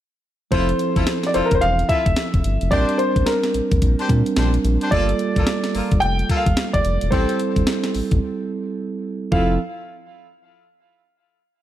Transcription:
0.51 F1 F3 C4 E4 F4 A4 C5, kick, closed hi-hat
0.69 closed hi-hat
0.79 closed hi-hat
0.96 G1 E4 F4 A4, kick, closed hi-hat
1.07 snare, closed hi-hat
1.23 D5, snare, closed hi-hat
1.34 F1 E4 F4 A4 C5, closed hi-hat
1.45 A#4
1.51 F1 C5, kick, closed hi-hat
1.61 E1 F5, closed hi-hat
1.79 closed hi-hat
1.89 E4 F4 A4 E5, kick, closed hi-hat
2.06 F1, kick, closed hi-hat
2.16 snare, closed hi-hat
2.34 F1, kick, closed hi-hat
2.44 G1, closed hi-hat
2.61 F1, closed hi-hat
2.71 A#1 G3 C4 D4 G4 A#4 C5 D5, kick, closed hi-hat
2.89 closed hi-hat
2.98 C5, closed hi-hat
3.16 A1, kick, closed hi-hat
3.26 A#4, snare, closed hi-hat
3.43 snare, closed hi-hat
3.54 A#1, closed hi-hat
3.71 A#1, kick, closed hi-hat
3.82 A#1, kick, closed hi-hat
3.99 D4 G4 C5, closed hi-hat
4.08 A#2 G3 C4 D4 A#4, kick, closed hi-hat
4.26 closed hi-hat
4.36 A#1 D4 G4 C5, snare, closed hi-hat
4.54 closed hi-hat
4.65 A#1, closed hi-hat
4.81 D4 G4 C5, closed hi-hat
4.91 G1 G3 A#3 F4 A4 D5, kick, closed hi-hat
5.09 closed hi-hat
5.19 closed hi-hat
5.36 A1 A#3 F4 A4, kick, closed hi-hat
5.47 snare, closed hi-hat
5.64 snare, closed hi-hat
5.74 G1 A#3 F4 A4, open hi-hat
5.91 G1, kick, closed hi-hat
6.00 F1 G5, closed hi-hat
6.19 closed hi-hat
6.29 A#3 F4 A4, kick, closed hi-hat
6.37 F5
6.46 G1, kick, closed hi-hat
6.57 snare, closed hi-hat
6.73 G1 D5, kick, closed hi-hat
6.85 F1, closed hi-hat
7.01 E1, closed hi-hat
7.11 A1 G3 C4 E4 G4 A4 C5, kick, closed hi-hat
7.29 closed hi-hat
7.39 closed hi-hat
7.56 G1, kick, closed hi-hat
7.67 snare, closed hi-hat
7.84 snare, closed hi-hat
7.94 A1, open hi-hat
8.11 A1, kick, closed hi-hat
9.32 F1 F3 C4 E4 F4 A4 F5, kick

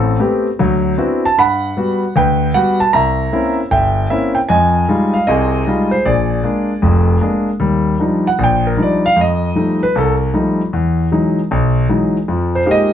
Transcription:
Already playing: A1 A2 C4 A4
0.20 A3 B3 C4 G4
0.59 D2 F#3
0.98 B3 C4 D4 E4 F#4
1.25 A5
1.38 G2 F#5 B5
1.77 G3 B3 F#4
2.16 D2 B4 G5
2.54 G3 B3 F#4 F#5
2.80 A5
2.93 C2 E5 A#5
3.33 A#3 C4 C#4 E4
3.71 G1 E5 G5
4.10 A#3 C4 C#4 E4 E5
4.35 G5
4.49 F2 D#5 G#5
4.89 G3 G#3 D#4 F4
5.14 F5
5.27 C2 C3 G#4 D#5
5.67 G3 G#3 D#4 F4
5.91 C5
6.05 A#1 G#4 D5
6.44 G#3 A#3 D4
6.82 F1 F2
7.21 G#3 A#3 D4
7.60 D#2 G3
8.00 F3 G3 D4 D#4
8.27 F#5
8.39 A#1
8.44 G5
8.67 A#4
8.77 F3 G3 D4 D#4
8.83 D5
9.06 F5
9.16 F2
9.21 D#5
9.55 F3 G3 A3 D#4
9.83 B4
9.95 C2 A4
10.34 F3 G3 A3 D#4
10.73 E2
11.12 E3 F#3 G#3 D#4
11.51 B1
11.89 E3 F#3 G#3 D#4
12.28 F2 F3
12.55 C5
12.66 G#3 A#3 D#4 F4 G4
12.71 D#5

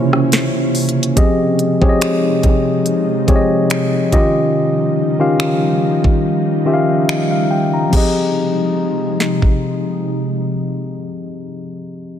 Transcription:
Already playing: C3 C#3 A#3 C#4 E4 F4 G4 C5 C#5 E5
0.13 cross-stick
0.32 snare, closed hi-hat
0.75 closed hi-hat, open hi-hat
0.89 closed hi-hat
1.03 closed hi-hat
1.16 C3 F3 G#3 C4 D#4 G4 G#4 D#5, kick, closed hi-hat
1.59 closed hi-hat
1.81 F3 C4 G4 G#4 C#5, kick
1.89 D#5
2.01 finger snap, closed hi-hat
2.43 kick, closed hi-hat
2.86 closed hi-hat
3.27 F3 C4 G4 G#4 C#5, kick, closed hi-hat
3.36 D#5
3.70 finger snap, closed hi-hat
4.12 C#3 D#3 F3 G3 C#4 D#4 F4 G4 D#5, kick, closed hi-hat
5.19 D#3 C#4 F4 G4 F5
5.40 finger snap
6.04 kick
6.65 D#3 C#4 F4 G4 E5
6.74 F5
7.09 finger snap
7.31 F5
7.51 G5
7.74 A#5
7.89 F3 C4 G4, kick
7.93 C3 F3 G#3 D#4 G#4 D#5, crash
9.20 snare
9.42 kick

